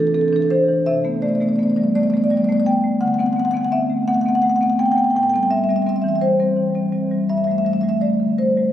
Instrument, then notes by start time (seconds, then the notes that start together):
marimba
Already playing: E3 D4
0.00 A4
0.07 A4
0.14 C4 A4
0.21 A4
0.28 A4
0.33 E3 D4 A4
0.42 A4
0.50 E3 D4 C5
0.68 E3
0.86 C3 E5
1.04 A3 B3
1.22 A3 D5
1.28 D5
1.35 D5
1.41 A3 B3 D5
1.49 D5
1.56 A3 B3 D5
1.63 D5
1.70 D5
1.76 G3 D5
1.83 D5
1.95 A3 D5
2.03 D5
2.10 A3 B3 D5
2.17 D5
2.24 D5
2.30 G3 D5
2.37 D5
2.44 D5
2.49 A3 B3 D5
2.60 D5
2.66 A3 B3 G5
2.84 A3
3.01 D3 F#5
3.08 F#5
3.14 F#5
3.19 B3 C4 F#5
3.26 F#5
3.33 B3 F#5
3.40 F#5
3.45 F#5
3.51 B3 C4 F#5
3.57 F#5
3.65 F#5
3.72 B3 C4 E5
3.90 A3
4.08 B3 F#5
4.14 F#5
4.21 F#5
4.26 B3 C4 F#5
4.35 F#5
4.42 A3 F#5
4.50 F#5
4.56 F#5
4.61 B3 C4 F#5
4.70 F#5
4.79 B3 C4 G5
4.86 G5
4.92 G5
4.97 B3 G5
5.04 G5
5.10 G5
5.15 A2 G5
5.23 G5
5.29 G3 G5
5.34 C4 G5
5.43 G5
5.51 G3 E5
5.57 E5
5.64 E5
5.69 G3 C4 E5
5.76 E5
5.82 E5
5.86 G3 C4 E5
5.96 E5
6.02 E3 E5
6.09 E5
6.15 E5
6.21 G3 C5
6.40 G3 C4
6.57 E3
6.75 G3 C4
6.92 G3 C4
7.11 G3
7.29 G2 E5
7.38 E5
7.44 G3 A3 E5
7.51 E5
7.58 E5
7.65 G3 E5
7.73 E5
7.81 G3 A3 E5
7.89 E5
8.01 G3 A3 D5
8.20 D3
8.38 G3 C5
8.57 G3 A3